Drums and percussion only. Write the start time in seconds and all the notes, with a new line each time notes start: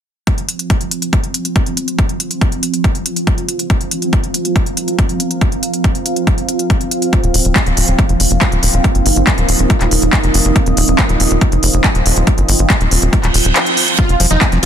0.27 kick, closed hi-hat
0.38 closed hi-hat
0.49 closed hi-hat
0.59 closed hi-hat
0.70 kick, closed hi-hat
0.81 closed hi-hat
0.91 closed hi-hat
1.02 closed hi-hat
1.13 kick, closed hi-hat
1.24 closed hi-hat
1.34 closed hi-hat
1.45 closed hi-hat
1.56 kick, closed hi-hat
1.66 closed hi-hat
1.77 closed hi-hat
1.88 closed hi-hat
1.99 kick, closed hi-hat
2.09 closed hi-hat
2.20 closed hi-hat
2.31 closed hi-hat
2.41 kick, closed hi-hat
2.52 closed hi-hat
2.63 closed hi-hat
2.74 closed hi-hat
2.84 kick, closed hi-hat
2.95 closed hi-hat
3.06 closed hi-hat
3.16 closed hi-hat
3.27 kick, closed hi-hat
3.38 closed hi-hat
3.49 closed hi-hat
3.59 closed hi-hat
3.70 kick, closed hi-hat
3.81 closed hi-hat
3.91 closed hi-hat
4.02 closed hi-hat
4.13 kick, closed hi-hat
4.24 closed hi-hat
4.34 closed hi-hat
4.45 closed hi-hat
4.56 kick, closed hi-hat
4.66 closed hi-hat
4.77 closed hi-hat
4.88 closed hi-hat
4.99 kick, closed hi-hat
5.09 closed hi-hat
5.20 closed hi-hat
5.31 closed hi-hat
5.41 kick, closed hi-hat
5.52 closed hi-hat
5.63 closed hi-hat
5.74 closed hi-hat
5.84 kick, closed hi-hat
5.95 closed hi-hat
6.06 closed hi-hat
6.16 closed hi-hat
6.27 kick, closed hi-hat
6.38 closed hi-hat
6.49 closed hi-hat
6.59 closed hi-hat
6.70 kick, closed hi-hat
6.81 closed hi-hat
6.91 closed hi-hat
7.02 closed hi-hat
7.13 kick, closed hi-hat
7.24 closed hi-hat
7.34 open hi-hat
7.45 closed hi-hat
7.56 kick, clap, closed hi-hat
7.66 closed hi-hat
7.77 open hi-hat
7.88 closed hi-hat
7.99 kick, closed hi-hat
8.09 closed hi-hat
8.20 open hi-hat
8.31 closed hi-hat
8.41 kick, clap, closed hi-hat
8.52 closed hi-hat
8.63 open hi-hat
8.74 closed hi-hat
8.84 kick, closed hi-hat
8.95 closed hi-hat
9.06 open hi-hat
9.16 closed hi-hat
9.27 kick, clap, closed hi-hat
9.38 closed hi-hat
9.49 open hi-hat
9.59 closed hi-hat
9.70 kick, closed hi-hat
9.81 clap, closed hi-hat
9.91 open hi-hat
10.02 closed hi-hat
10.13 kick, clap, closed hi-hat
10.24 closed hi-hat
10.34 open hi-hat
10.45 closed hi-hat
10.56 kick, closed hi-hat
10.66 closed hi-hat
10.77 open hi-hat
10.88 closed hi-hat
10.99 kick, clap, closed hi-hat
11.09 closed hi-hat
11.20 open hi-hat
11.31 closed hi-hat
11.41 kick, closed hi-hat
11.52 closed hi-hat
11.63 open hi-hat
11.74 closed hi-hat
11.84 kick, clap, closed hi-hat
11.95 closed hi-hat
12.06 open hi-hat
12.16 closed hi-hat
12.27 kick, closed hi-hat
12.38 closed hi-hat
12.49 open hi-hat
12.59 closed hi-hat
12.70 kick, clap, closed hi-hat
12.81 closed hi-hat
12.91 open hi-hat
13.02 closed hi-hat
13.13 kick, closed hi-hat
13.24 clap, closed hi-hat
13.34 open hi-hat
13.45 closed hi-hat
13.56 clap, closed hi-hat
13.66 closed hi-hat
13.77 open hi-hat
13.88 closed hi-hat
13.99 kick, closed hi-hat
14.09 closed hi-hat
14.20 open hi-hat
14.31 closed hi-hat
14.41 kick, clap, closed hi-hat
14.52 closed hi-hat